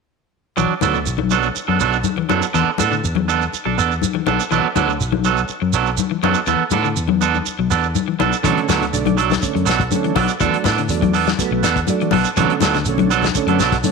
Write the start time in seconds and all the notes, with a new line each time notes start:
0.57 B1 E3 F#3 D4, muted clean electric guitar stroke, high conga, shekere
0.81 D2 F#3 B3 D4 A4, high conga, shekere
0.94 D3, shekere
1.06 B1, high conga, shekere
1.18 F#3, high conga
1.30 F#3 B3 D4 A4, shekere
1.43 shekere
1.55 muted fingered electric bass stroke, high conga, shekere
1.68 F#2 F#3 B3 D4 A4
1.80 B1 F#3 B3 D4 A4, shekere
1.93 shekere
2.04 high conga, shekere
2.17 E3, high conga
2.29 F#2 F#3 B3 D4 A4, high conga, shekere
2.42 shekere
2.54 E2 E3 B3 D4 A4, high conga, shekere
2.68 muted fingered electric bass stroke
2.78 A2 B3 D4 A4, high conga, shekere
2.92 D3, shekere
3.03 E2, high conga, shekere
3.15 F#3, high conga
3.28 B3 D4 A4, shekere
3.41 shekere
3.53 muted fingered electric bass stroke, high conga, shekere
3.65 B1 F#3 D4 A4
3.78 E2 B3 D4 A4, shekere
3.91 shekere
4.02 high conga, shekere
4.14 E3, high conga
4.27 B1 F#3 B3 D4 A4, high conga, shekere
4.40 shekere
4.51 B1 E3 F#3 B3 D4 A4, high conga, shekere
4.76 D2 F#3 B3 D4 A4, high conga, shekere
4.88 D3, shekere
5.00 B1, high conga, shekere
5.12 F#3, high conga
5.24 F#3 B3 A4, shekere
5.37 shekere
5.48 muted fingered electric bass stroke, high conga, shekere
5.62 F#2 F#3
5.73 B1 F#3 B3 D4 A4, shekere
5.86 shekere
5.97 high conga, shekere
6.11 E3
6.23 F#2 F#3 B3 D4 A4, high conga, shekere
6.34 shekere
6.46 E2 E3 B3 A4, muted clean electric guitar stroke, high conga, shekere
6.71 A2 B3 D4 A4, high conga, shekere
6.84 D3, shekere
6.96 E2, high conga, shekere
7.08 F#3, high conga
7.21 B3 D4 A4, shekere
7.34 high conga, shekere
7.46 muted fingered electric bass stroke, high conga, shekere
7.59 B1 F#3
7.70 E2 B3 D4 A4, shekere
7.83 shekere
7.95 high conga, shekere
8.08 E3
8.19 B1 F#3 B3 D4 A4, high conga, shekere
8.32 shekere
8.43 B1 D3 E3 F#3 A3 B3 C#4 D4 A4, kick, closed hi-hat, high conga, shekere
8.58 closed hi-hat
8.69 D2 F#3 B3 D4 A4, snare, closed hi-hat, high conga, shekere
8.82 D3, closed hi-hat, shekere
8.93 B1 D3 A3 D4, closed hi-hat, high conga, shekere
9.06 F#3, closed hi-hat, high conga
9.17 F#3 D4 A4, muted clean electric guitar stroke, closed hi-hat, shekere
9.30 snare, closed hi-hat, high conga, shekere
9.41 D3 A3 C#4, muted fingered electric bass stroke, kick, closed hi-hat, high conga, shekere
9.55 F#2 F#3, closed hi-hat
9.65 B1 F#3 B3 D4 A4, snare, closed hi-hat, shekere
9.80 kick, closed hi-hat, shekere
9.90 D3 A3 C#4, closed hi-hat, high conga, shekere
10.04 E3, closed hi-hat
10.15 B1 F#3 B3 D4 A4, kick, open hi-hat, high conga, shekere
10.28 closed hi-hat, shekere
10.40 E2 E3 F#3 A3 B3 D4 A4, kick, closed hi-hat, shekere
10.53 muted fingered electric bass stroke, closed hi-hat
10.64 A2 B3 D4 A4, kick, snare, closed hi-hat, high conga, shekere
10.78 D3, closed hi-hat, shekere
10.89 E2 F#3 A3 D4, closed hi-hat, high conga, shekere
11.02 F#3, kick, closed hi-hat, high conga
11.14 B3 D4 A4, open hi-hat, shekere
11.27 snare, closed hi-hat, high conga, shekere
11.38 F#3 A3 B3, muted fingered electric bass stroke, kick, snare, closed hi-hat, high conga, shekere
11.51 B1 F#3
11.62 E2 B3 D4 A4, snare, closed hi-hat, shekere
11.76 kick, closed hi-hat, shekere
11.87 F#3 A3 D4, closed hi-hat, high conga, shekere
12.01 E3, closed hi-hat
12.11 B1 F#3 B3 D4 A4, kick, open hi-hat, high conga, shekere
12.25 closed hi-hat, shekere
12.36 B1 D3 E3 F#3 A3 B3 C#4 D4 A4, kick, closed hi-hat, high conga, shekere
12.50 closed hi-hat
12.61 D2 F#3 B3 D4 A4, snare, closed hi-hat, high conga, shekere
12.74 D3, snare, closed hi-hat, shekere
12.85 B1 D3 A3 C#4, closed hi-hat, high conga, shekere
12.98 F#3, closed hi-hat, high conga
13.10 F#3 B3 D4 A4, closed hi-hat, shekere
13.22 snare, closed hi-hat, high conga, shekere
13.35 D3 A3 C#4, kick, closed hi-hat, shekere
13.46 F#2 F#3 B3 D4 A4, closed hi-hat
13.59 B1 F#3 B3 D4 A4, snare, closed hi-hat, shekere
13.72 kick, snare, closed hi-hat, shekere
13.83 D3 A3 C#4, closed hi-hat, high conga, shekere